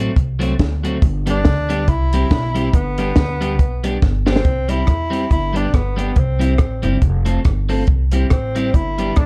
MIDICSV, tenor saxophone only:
0, 0, Header, 1, 2, 480
1, 0, Start_track
1, 0, Key_signature, 0, "major"
1, 0, Tempo, 429185
1, 1141, Time_signature, 4, 2, 24, 8
1, 10355, End_track
2, 0, Start_track
2, 0, Title_t, "Tenor saxophone"
2, 0, Program_c, 0, 66
2, 1455, Note_on_c, 0, 62, 106
2, 2116, Note_on_c, 0, 64, 115
2, 2133, Note_off_c, 0, 62, 0
2, 3078, Note_on_c, 0, 59, 96
2, 3095, Note_off_c, 0, 64, 0
2, 4505, Note_off_c, 0, 59, 0
2, 4786, Note_on_c, 0, 60, 93
2, 5258, Note_on_c, 0, 64, 109
2, 5275, Note_off_c, 0, 60, 0
2, 5938, Note_off_c, 0, 64, 0
2, 5954, Note_on_c, 0, 64, 101
2, 6227, Note_on_c, 0, 62, 88
2, 6244, Note_off_c, 0, 64, 0
2, 6427, Note_on_c, 0, 59, 78
2, 6443, Note_off_c, 0, 62, 0
2, 6917, Note_on_c, 0, 60, 83
2, 6934, Note_off_c, 0, 59, 0
2, 7664, Note_off_c, 0, 60, 0
2, 9308, Note_on_c, 0, 60, 90
2, 9788, Note_on_c, 0, 64, 106
2, 9805, Note_off_c, 0, 60, 0
2, 10274, Note_on_c, 0, 62, 89
2, 10291, Note_off_c, 0, 64, 0
2, 10355, Note_off_c, 0, 62, 0
2, 10355, End_track
0, 0, End_of_file